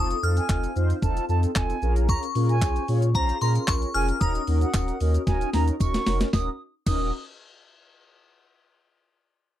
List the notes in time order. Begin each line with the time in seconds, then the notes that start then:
Already playing: F1 C4 D#4 F4 A4 D#6
0.10 closed hi-hat, shaker
0.23 F2 C4 D#4 F4 A4 F6, shaker
0.37 G#5, closed hi-hat, shaker
0.49 F1 C4 D#4 F4 A4, kick, clap, shaker
0.64 closed hi-hat, shaker
0.76 F2 C4 D#4 F4 C5, shaker
0.90 closed hi-hat, shaker
1.02 F1 C4 D#4 F4 A4 A5, kick, shaker
1.17 closed hi-hat, shaker
1.29 F2 C4 D#4 F4 A4 A5, shaker
1.43 closed hi-hat, shaker
1.55 F1 C4 D#4 F4 A4 G#5, kick, clap, shaker
1.70 closed hi-hat, shaker
1.82 A#1 C#4 F4 G#4 A#4, shaker
1.96 closed hi-hat, shaker
2.09 A#5 C#6, kick, shaker
2.23 closed hi-hat, shaker
2.35 A#2 C#4 F4 G#4 A#4, open hi-hat, shaker
2.49 G#5, closed hi-hat, shaker
2.62 A#1 F4 G#4 C5, kick, clap, tambourine, shaker
2.76 closed hi-hat, shaker
2.88 A#2 C#4 F4 G#4 C#5, open hi-hat, shaker
3.02 closed hi-hat, shaker
3.15 A#1 C#4 F4 G#4 C5 A#5, kick, shaker
3.29 closed hi-hat, shaker
3.41 A#2 C#4 F4 G#4 A#4 A#5 C6, open hi-hat, shaker
3.55 closed hi-hat, shaker
3.68 A#1 C#4 A#4 C#6, kick, clap, tambourine, shaker
3.82 closed hi-hat, shaker
3.94 F1 C#4 F4 G#4 A#4 G#5 F6, open hi-hat, shaker
4.09 closed hi-hat, shaker
4.21 D#1 C#4 D#4 F#4 A#4 A#5 D#6, kick, shaker
4.35 closed hi-hat, shaker
4.47 D#2 C#4 D#4 F#4 A#4, open hi-hat, shaker
4.61 F#5, closed hi-hat, shaker
4.74 D#1 C#4 D#4 F#4 A#4, kick, clap, tambourine, shaker
4.88 closed hi-hat, shaker
5.00 D#2 C#4 D#4 F#4 A#4, open hi-hat, shaker
5.14 closed hi-hat, shaker
5.27 D#1 C#4 D#4 F#4 A#4 G#5, kick, snare, shaker
5.41 closed hi-hat, shaker
5.53 D#2 C#4 D#4 F#4 A#4 A#5, snare, open hi-hat, shaker
5.68 closed hi-hat, shaker
5.80 D#1 C#4 D#4 F#4 A#4 C#6, kick, tambourine, shaker
5.94 snare, closed hi-hat, shaker
6.06 F1 C#4 D#4 F#4 A#4, snare, open hi-hat, shaker
6.21 snare, closed hi-hat, shaker
6.33 D#1 C#4 D#4 F#4 A#4 D#6, kick, snare, tambourine
6.86 D#1 C#4 D#4 F#4 A#4 D#6, kick, crash, tambourine